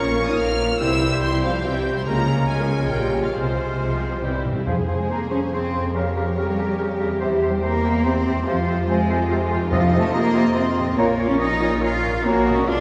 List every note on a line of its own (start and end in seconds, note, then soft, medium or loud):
0.00 0.34 A#1 medium
0.00 0.34 A#2 medium
0.00 0.82 A#2 medium
0.00 0.82 F3 medium
0.00 0.81 A#3 medium
0.00 0.82 A#3 soft
0.00 0.28 C#4 medium
0.00 0.81 F4 medium
0.00 0.65 C#5 medium
0.00 0.82 C#5 medium
0.00 0.38 F5 soft
0.00 0.29 C#6 medium
0.00 0.77 F6 medium
0.07 0.19 A#3 medium
0.07 0.18 F4 soft
0.07 0.18 C#5 medium
0.17 0.29 F3 medium
0.17 0.29 C#4 medium
0.17 0.58 A#4 medium
0.17 0.28 A#4 medium
0.17 0.28 F5 medium
0.28 0.39 A#3 medium
0.28 0.39 D#4 medium
0.28 0.39 F4 soft
0.28 0.39 C#5 soft
0.28 0.39 D#6 medium
0.37 0.75 A#1 medium
0.37 0.75 A#2 medium
0.37 0.48 F3 medium
0.37 0.48 C#4 medium
0.37 0.81 F4 medium
0.37 0.48 A#4 medium
0.37 0.48 F5 medium
0.37 0.82 F5 medium
0.37 0.81 F6 loud
0.49 0.60 A#3 soft
0.49 0.60 F4 medium
0.49 0.60 C#5 soft
0.59 0.70 F3 soft
0.59 0.70 C#4 soft
0.59 0.82 A#4 medium
0.59 0.70 A#4 soft
0.59 0.70 F5 medium
0.70 0.81 A#3 medium
0.70 0.81 F4 medium
0.70 0.81 C#5 soft
0.79 1.17 C2 medium
0.79 2.07 C3 medium
0.79 1.17 C3 medium
0.79 0.90 E3 medium
0.79 1.77 G3 medium
0.79 0.90 C4 medium
0.79 1.78 E4 medium
0.79 1.21 E4 medium
0.79 0.90 G4 medium
0.79 0.90 C5 medium
0.79 1.77 C5 medium
0.79 1.21 E6 loud
0.79 2.06 G6 medium
0.91 1.01 G3 medium
0.91 1.01 E4 medium
0.91 1.02 E4 medium
0.91 1.02 E5 medium
1.00 1.11 E3 medium
1.00 2.08 G3 soft
1.00 1.11 C4 medium
1.00 1.13 G4 soft
1.00 1.13 C5 medium
1.10 1.22 G3 medium
1.10 1.22 E4 medium
1.10 1.23 E4 medium
1.10 1.23 E5 medium
1.21 1.59 C2 medium
1.21 1.59 C3 medium
1.21 1.32 E3 medium
1.21 1.32 C4 medium
1.21 1.43 C4 medium
1.21 1.33 G4 soft
1.21 2.07 C5 medium
1.21 1.33 C5 medium
1.21 1.43 C6 medium
1.32 1.43 G3 medium
1.32 1.43 E4 soft
1.32 1.43 E4 medium
1.32 1.43 E5 medium
1.42 1.53 E3 soft
1.42 1.65 F3 medium
1.42 1.53 C4 soft
1.42 1.83 G4 medium
1.42 1.54 G4 soft
1.42 1.54 C5 soft
1.42 1.64 F5 medium
1.52 1.64 G3 soft
1.52 1.64 E4 medium
1.52 1.64 E4 soft
1.52 1.64 E5 medium
1.63 2.01 C2 medium
1.63 2.01 C3 medium
1.63 1.74 E3 medium
1.63 1.96 G3 medium
1.63 1.74 C4 medium
1.63 1.74 G4 medium
1.63 1.74 C5 medium
1.63 2.07 E5 medium
1.63 1.96 G5 medium
1.74 1.85 G3 soft
1.74 1.85 E4 soft
1.74 1.85 E4 medium
1.74 1.85 E5 soft
1.84 1.95 E3 soft
1.84 1.95 C4 soft
1.84 2.07 G4 soft
1.84 1.95 G4 soft
1.84 1.95 C5 medium
1.94 2.05 G3 medium
1.94 2.07 C4 medium
1.94 2.05 E4 medium
1.94 2.06 E4 medium
1.94 2.06 E5 soft
1.94 2.07 C6 medium
2.05 2.43 C#2 medium
2.05 2.92 C#3 medium
2.05 2.43 C#3 medium
2.05 2.15 G#3 medium
2.05 4.24 G#3 medium
2.05 2.48 A#3 medium
2.05 2.15 C#4 medium
2.05 4.23 F4 medium
2.05 2.16 G#4 medium
2.05 2.15 A#4 medium
2.05 3.35 C#5 medium
2.05 2.47 A#5 loud
2.05 4.18 F6 medium
2.15 2.27 F3 soft
2.15 2.27 A#3 soft
2.15 2.27 F4 medium
2.15 2.26 A#4 medium
2.26 2.37 G#3 medium
2.26 2.37 C#4 soft
2.26 3.36 C#4 soft
2.26 2.38 G#4 soft
2.26 2.36 A#4 soft
2.36 2.48 F3 medium
2.36 2.48 A#3 medium
2.36 2.48 F4 soft
2.36 2.47 A#4 soft
2.48 2.86 C#2 medium
2.48 2.86 C#3 medium
2.48 2.58 G#3 soft
2.48 2.91 G#3 medium
2.48 2.58 C#4 medium
2.48 3.11 G#4 medium
2.48 2.58 G#4 medium
2.48 2.57 A#4 soft
2.48 2.90 G#5 medium
2.58 2.69 F3 medium
2.58 2.69 A#3 soft
2.58 2.69 F4 soft
2.58 2.68 A#4 soft
2.69 2.80 G#3 soft
2.69 2.80 C#4 soft
2.69 2.80 G#4 soft
2.69 2.80 A#4 soft
2.69 3.36 C#5 soft
2.79 2.91 F3 soft
2.79 2.90 A#3 medium
2.79 2.91 F4 soft
2.79 2.89 A#4 soft
2.89 3.29 A#1 medium
2.89 3.35 A#2 medium
2.89 3.29 A#2 medium
2.89 3.23 G3 medium
2.89 3.01 G#3 soft
2.89 3.01 C#4 soft
2.89 3.00 G#4 medium
2.89 2.99 A#4 medium
2.89 3.22 G5 medium
3.00 3.12 F3 soft
3.00 3.12 A#3 soft
3.00 3.12 F4 soft
3.00 3.10 A#4 soft
3.11 3.23 G#3 soft
3.11 3.23 C#4 soft
3.11 4.24 F4 soft
3.11 3.22 G#4 soft
3.11 3.77 G#4 soft
3.11 3.21 A#4 soft
3.22 3.34 F3 soft
3.22 3.29 F3 medium
3.22 3.34 A#3 soft
3.22 3.33 F4 soft
3.22 3.34 A#4 soft
3.22 3.34 F5 medium
3.33 3.73 C2 medium
3.33 4.21 C3 medium
3.33 3.73 C3 medium
3.33 4.43 C3 medium
3.33 3.42 G#3 soft
3.33 3.44 C4 soft
3.33 3.44 G#4 soft
3.33 4.44 C5 medium
3.43 3.55 F3 soft
3.43 3.54 G#3 soft
3.43 3.56 F4 soft
3.43 3.56 C5 soft
3.55 3.66 G#3 soft
3.55 3.67 C4 soft
3.55 4.51 C4 soft
3.55 3.67 G#4 soft
3.66 3.78 F3 soft
3.66 3.77 G#3 soft
3.66 3.78 F4 soft
3.66 3.78 C5 soft
3.77 4.18 C2 medium
3.77 4.17 C3 medium
3.77 3.88 G#3 soft
3.77 3.88 C4 soft
3.77 3.88 G#4 soft
3.77 4.24 G#4 soft
3.88 4.00 F3 soft
3.88 3.98 G#3 soft
3.88 3.99 F4 soft
3.88 4.00 C5 soft
3.99 4.10 G#3 soft
3.99 4.11 C4 soft
3.99 4.11 G#4 soft
3.99 5.96 C5 soft
4.11 4.22 F3 soft
4.11 4.22 G#3 soft
4.11 4.22 F4 soft
4.11 4.22 C5 soft
4.21 4.62 C2 medium
4.21 4.60 C3 medium
4.21 4.68 C3 medium
4.21 4.29 C3 soft
4.21 4.33 E3 soft
4.21 4.45 G3 soft
4.21 4.32 C4 soft
4.21 4.44 E4 soft
4.21 4.32 G4 medium
4.21 4.45 G6 medium
4.32 4.45 G3 soft
4.32 4.44 E4 soft
4.32 4.45 E4 soft
4.32 4.44 C5 soft
4.38 4.44 C3 soft
4.43 4.53 C3 medium
4.43 4.55 E3 soft
4.43 4.55 C4 soft
4.43 4.68 E4 soft
4.43 4.55 G4 soft
4.43 4.68 G4 soft
4.48 5.75 F2 medium
4.53 4.61 C3 medium
4.53 4.66 G3 soft
4.53 5.89 C4 soft
4.53 4.65 E4 soft
4.53 4.66 E4 soft
4.53 4.65 C5 soft
4.57 7.18 F4 soft
4.62 4.74 F3 medium
4.62 5.94 G#4 soft
4.62 5.89 G#4 medium
4.62 4.81 C5 medium
4.66 5.27 F2 medium
4.66 7.18 F2 medium
4.66 4.76 F3 medium
4.66 4.81 G#4 medium
4.66 4.76 G#4 medium
4.66 5.91 G#4 medium
4.66 4.76 C5 medium
4.66 5.91 C5 medium
4.66 4.73 F5 medium
4.88 4.98 F3 soft
4.88 4.98 G#4 medium
4.88 4.98 C5 medium
4.96 5.10 G#3 medium
4.96 5.09 G#5 medium
5.09 5.19 F3 soft
5.09 5.31 A#3 medium
5.09 5.19 G#4 medium
5.09 5.19 C5 medium
5.09 5.16 A#5 medium
5.30 5.40 F3 medium
5.30 5.38 C#4 medium
5.30 5.41 G#4 medium
5.30 5.40 C5 soft
5.30 5.38 C#6 medium
5.51 5.61 F3 medium
5.51 5.94 C4 medium
5.51 5.61 G#4 medium
5.51 5.62 C5 medium
5.51 5.94 C6 medium
5.73 7.14 F2 medium
5.73 5.83 F3 medium
5.73 5.83 G#4 soft
5.73 5.83 C5 medium
5.81 8.42 A#3 medium
5.86 7.18 C#4 soft
5.90 7.15 G4 soft
5.90 7.16 A#4 medium
5.90 6.09 A#4 medium
5.94 6.04 C#3 medium
5.94 6.36 F3 medium
5.94 6.04 G4 medium
5.94 8.43 G4 medium
5.94 6.05 A#4 medium
5.94 6.09 C#5 medium
5.94 7.18 C#5 medium
5.94 6.36 F5 medium
6.15 6.25 C#3 medium
6.15 6.25 G4 medium
6.15 6.26 A#4 medium
6.37 6.47 C#3 medium
6.37 6.99 G3 medium
6.37 6.47 G4 medium
6.37 6.47 A#4 medium
6.37 7.00 G5 medium
6.58 6.67 C#3 medium
6.58 6.68 G4 medium
6.58 6.68 A#4 medium
6.78 6.88 C#3 medium
6.78 6.88 G4 medium
6.78 6.88 A#4 medium
6.99 8.39 E2 medium
6.99 7.10 C#3 medium
6.99 7.09 G4 medium
6.99 7.10 A#4 medium
7.07 8.42 G3 soft
7.12 8.37 C4 medium
7.16 8.46 G4 soft
7.16 7.30 G4 medium
7.16 7.29 C5 medium
7.21 8.47 E2 medium
7.21 7.31 C3 medium
7.21 7.47 E3 medium
7.21 7.36 G4 medium
7.21 9.68 C5 medium
7.21 7.36 C5 medium
7.21 7.47 E5 medium
7.41 7.51 C3 medium
7.41 7.51 G4 medium
7.41 7.52 C5 medium
7.50 7.64 G3 medium
7.50 7.63 G5 medium
7.62 7.72 C3 medium
7.62 8.05 A#3 loud
7.62 7.73 G4 medium
7.62 7.72 C5 medium
7.62 8.05 A#5 medium
7.84 7.93 C3 medium
7.84 7.93 G4 medium
7.84 7.93 C5 soft
8.04 8.15 C3 medium
8.04 8.47 C4 loud
8.04 8.14 G4 medium
8.04 8.15 C5 medium
8.04 8.46 C6 medium
8.26 9.53 F2 medium
8.26 8.36 C3 medium
8.26 8.35 G4 medium
8.26 8.36 C5 medium
8.33 9.67 G#3 medium
8.38 10.95 C4 medium
8.42 10.98 F2 medium
8.42 9.66 F4 medium
8.42 10.94 F4 medium
8.42 8.88 F5 medium
8.46 8.56 C3 medium
8.46 8.88 F3 medium
8.46 8.56 F4 medium
8.46 8.62 F4 medium
8.46 8.56 C5 medium
8.46 8.62 C5 medium
8.66 8.77 C3 medium
8.66 8.77 F4 medium
8.66 8.76 C5 medium
8.87 8.97 C3 medium
8.87 9.50 G#3 medium
8.87 8.97 F4 medium
8.87 8.98 C5 medium
8.87 9.49 G#5 medium
9.09 9.18 C3 medium
9.09 9.19 F4 medium
9.09 9.19 C5 medium
9.29 9.40 C3 medium
9.29 9.39 F4 medium
9.29 9.40 C5 medium
9.50 10.91 F2 medium
9.50 9.60 C3 medium
9.50 9.60 F4 medium
9.50 9.60 C5 medium
9.59 10.93 A3 medium
9.63 10.95 D#4 medium
9.67 9.98 F3 loud
9.67 10.91 F4 medium
9.67 9.86 F4 medium
9.67 9.81 F4 medium
9.67 9.86 C5 medium
9.67 9.97 F5 medium
9.72 10.31 F2 medium
9.72 9.81 C3 medium
9.72 10.94 C5 medium
9.72 9.81 D#5 medium
9.72 10.94 D#5 medium
9.91 10.03 C3 medium
9.91 10.01 F4 medium
9.91 10.02 D#5 medium
9.99 10.14 A3 medium
9.99 10.13 A5 medium
10.12 10.24 C3 medium
10.12 10.55 A#3 loud
10.12 10.22 F4 medium
10.12 10.23 D#5 medium
10.12 10.55 A#5 medium
10.34 10.44 C3 medium
10.34 10.43 F4 medium
10.34 10.44 D#5 medium
10.55 10.65 C3 medium
10.55 10.97 C4 medium
10.55 10.65 F4 medium
10.55 10.65 D#5 medium
10.55 10.98 C6 loud
10.76 12.06 A#2 medium
10.76 10.86 C3 medium
10.76 10.86 F4 medium
10.76 10.87 D#5 medium
10.84 12.10 A#3 medium
10.88 12.15 C#4 medium
10.93 12.24 F4 medium
10.93 11.06 F4 medium
10.98 12.24 A#1 medium
10.98 11.07 A#2 medium
10.98 11.26 A#3 loud
10.98 11.13 F4 medium
10.98 12.21 F4 medium
10.98 12.21 A#4 medium
10.98 12.20 C#5 medium
10.98 11.07 C#5 medium
10.98 11.13 C#5 medium
10.98 11.04 A#5 medium
11.18 11.28 A#2 medium
11.18 11.28 F4 medium
11.18 11.28 C#5 medium
11.26 11.40 C#4 loud
11.26 11.40 C#6 medium
11.39 11.49 A#2 medium
11.39 11.82 D#4 loud
11.39 11.49 F4 medium
11.39 11.50 C#5 medium
11.39 11.82 D#6 medium
11.60 11.70 A#2 medium
11.60 11.70 F4 medium
11.60 11.71 C#5 medium
11.80 11.90 A#2 medium
11.80 11.91 F4 medium
11.80 12.24 F4 loud
11.80 11.91 C#5 medium
11.80 12.24 F6 medium
12.02 12.12 A#2 medium
12.02 12.13 F4 medium
12.02 12.12 C#5 medium
12.07 12.60 A#2 medium
12.11 12.62 A#3 medium
12.16 12.64 C#4 medium
12.20 12.67 A#2 medium
12.20 12.66 F#4 medium
12.24 12.64 A#1 medium
12.24 12.53 A#3 loud
12.24 12.66 F#4 medium
12.24 12.64 F#4 medium
12.24 12.40 F#4 medium
12.24 12.65 A#4 medium
12.24 12.44 C#5 medium
12.24 12.64 C#5 medium
12.24 12.40 C#5 medium
12.24 12.53 A#5 medium
12.47 12.80 B2 medium
12.47 12.70 D#5 medium
12.52 12.80 G#3 medium
12.52 12.60 C#4 medium
12.52 12.66 C#6 medium
12.58 12.80 D4 medium
12.63 12.80 B1 medium
12.63 12.80 B2 medium
12.63 12.80 F4 medium
12.63 12.80 G#4 medium
12.63 12.80 D6 medium
12.67 12.80 D4 loud
12.67 12.80 F4 medium
12.67 12.80 G#4 medium
12.67 12.80 D5 medium
12.67 12.80 F5 medium